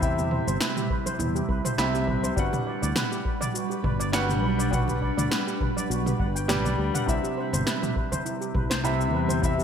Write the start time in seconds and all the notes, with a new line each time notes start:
Already playing: E2 C3 G3 C4 E4 E5 B5
0.00 C3 C4 E4 B5, kick, shaker
0.04 E5
0.18 G4, high conga, low conga, shaker
0.31 C5, mid tom
0.48 G1 C5, shaker
0.61 B4, snare, shaker
0.77 G4, mid tom, shaker
0.90 B4, kick
1.06 C5, high conga, shaker
1.19 E2 E4, mid tom, shaker
1.35 G4, shaker
1.49 C2 B4, kick
1.65 C5, mid tom, shaker
1.78 C2 C3 C4 E4 E5 B5, snare, shaker
1.94 G4, shaker
2.07 B4, kick, mid tom
2.23 C5, high conga, shaker
2.36 G1 G3 D4 F#4 B4 F#5, kick, shaker
2.53 G4, mid tom, high conga, low conga, shaker
2.66 D5
2.82 D2 D5, shaker
2.96 B4, snare, mid tom, shaker
3.12 G4, shaker
3.25 B4, kick
3.41 D5, mid tom, high conga, shaker
3.54 F#4, shaker
3.70 G4, shaker
3.84 G1 B4, kick, mid tom
4.00 D5, shaker
4.12 G3 D4 F#4 B4 F#5, snare, shaker
4.29 G4, mid tom, shaker
4.42 B1 B4
4.59 D5, shaker
4.71 G3 D4 F#4 B4 F#5, kick, mid tom, shaker
4.88 G4, high conga, low conga, shaker
5.02 D5, kick
5.17 D2 D5, mid tom, shaker
5.31 B4, snare, shaker
5.47 G4, shaker
5.61 B4, kick, mid tom
5.77 D5, high conga, shaker
5.90 B1 F#4, shaker
6.06 G4, mid tom, shaker
6.19 G1 F#5, kick
6.35 G5, shaker
6.48 G3 D4 G4 B4, snare, mid tom, shaker
6.65 B1 D5, low conga, shaker
6.78 D2 G4
6.94 F#5, mid tom, high conga, low conga, shaker
7.06 C2 C3 G3 C4 E4 E5 B5, kick, shaker
7.24 G4, high conga, shaker
7.37 C5
7.53 G1 C5, mid tom, shaker
7.66 B4, snare, shaker
7.83 G4, mid tom, high conga, shaker
7.96 B4, kick
8.12 C5, high conga, low conga, shaker
8.25 E4, shaker
8.41 G4, shaker
8.55 C2 B4, kick, mid tom
8.70 C5, snare, shaker
8.83 C3 C4 E4 E5 B5, shaker
9.00 G4, shaker
9.13 E2 B4
9.29 C5, low conga, shaker
9.42 C3 C4 E4 E5 B5, kick, shaker
9.58 G4, high conga, shaker